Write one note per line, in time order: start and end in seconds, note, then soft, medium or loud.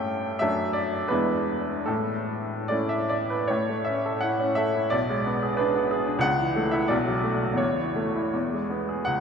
0.00 0.43 G2 soft
0.00 0.36 A3 soft
0.00 0.37 C#4 soft
0.00 0.37 A4 soft
0.00 0.39 E5 medium
0.00 0.43 G5 medium
0.39 1.09 F#2 soft
0.39 1.07 A3 soft
0.39 1.07 D4 soft
0.39 1.07 A4 soft
0.39 0.74 E5 medium
0.73 1.10 D5 medium
1.08 1.85 E2 soft
1.08 1.84 G#3 soft
1.08 1.84 D4 soft
1.08 1.84 E4 soft
1.08 1.87 B4 medium
1.86 2.67 A2 soft
1.86 3.10 A4 medium
2.68 3.47 A3 soft
2.68 3.47 C#4 soft
2.68 3.48 E4 soft
2.68 2.90 D5 medium
2.89 3.11 E5 medium
3.09 3.31 D5 medium
3.30 3.50 B4 soft
3.48 4.88 A2 soft
3.48 3.86 C#5 medium
3.69 3.98 A3 soft
3.84 4.15 C#4 soft
3.84 4.21 E5 medium
4.06 4.34 A4 soft
4.21 4.51 E4 soft
4.21 4.57 F#5 medium
4.40 4.68 C#4 soft
4.55 4.86 A4 soft
4.55 4.91 E5 medium
4.75 4.93 E4 soft
4.90 6.20 B1 soft
4.90 5.59 D5 medium
5.09 5.37 G#3 soft
5.26 5.54 B3 soft
5.42 5.69 G#4 soft
5.57 5.85 D4 soft
5.57 5.91 B4 medium
5.75 6.01 B3 soft
5.91 6.17 G#4 soft
6.07 6.23 D4 soft
6.19 6.86 C#2 medium
6.19 6.72 F#5 medium
6.39 6.66 E3 soft
6.56 6.84 A3 soft
6.71 6.91 E4 soft
6.71 6.90 E5 medium
6.88 7.57 B1 medium
6.88 7.58 D5 medium
7.07 7.35 F#3 soft
7.24 7.52 A3 soft
7.42 7.60 F#4 soft
7.54 8.28 E2 soft
7.54 8.32 C#5 medium
7.78 8.07 E3 soft
7.96 8.26 A3 soft
8.15 8.33 E4 soft
8.33 9.05 E2 soft
8.52 8.82 G#3 soft
8.70 9.00 B3 soft
8.89 9.07 G#4 soft
9.05 9.20 C#2 soft
9.05 9.20 F#5 medium